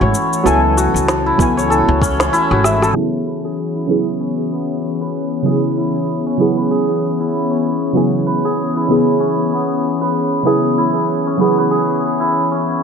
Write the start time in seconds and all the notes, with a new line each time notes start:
Already playing: E3 F#3 A3 B3 C#4 E4 F#4 A4 C#5 G#5
0.01 G#1 C#5
0.14 cabasa
0.33 cabasa
0.43 C#2 F#3 B3 E4 A4, cabasa
0.47 G#5
0.77 F#4, cabasa
0.94 C#2, cabasa
1.08 snare, cabasa
1.26 E4
1.38 C#2 F#3 B3 C#4 E4, kick, cabasa
1.42 G#5
1.57 C#5, cabasa
1.70 A4, cabasa
1.88 C#2
2.02 C#4, kick, cabasa
2.20 C#4, snare, cabasa
2.33 E4, cabasa
2.51 G#1 F#4, cross-stick
2.64 E5, cross-stick, cabasa
2.82 A4, cross-stick, cabasa
2.93 C#3 F#3 B3 E4
2.97 G#4
3.18 B3
3.27 B4
3.45 G#4
3.54 G#4
3.76 E4
3.87 C#3 F#3 B3 E4 G#4
4.20 C#4
4.52 B3
5.01 B4
5.42 C#3 F#3 B3 E4 G#4
5.47 G#4
5.78 E4
6.26 C#4
6.37 C#3 F#3 B3 E4 G#4
6.57 B4
6.71 G#4
7.20 E4
7.51 C#4
7.93 C#3 F#3 B3 E4 G#4
8.27 B4
8.45 G#4
8.76 E4
8.88 C#3 F#3 B3 E4 G#4
9.20 C#4
9.52 B3
10.01 B4
10.43 C#3 F#3 B3 E4 G#4
10.47 G#4
10.78 E4
11.27 C#4
11.37 C#3 F#3 B3 E4
11.41 G#4
11.58 B4
11.71 G#4
12.20 E4
12.52 C#4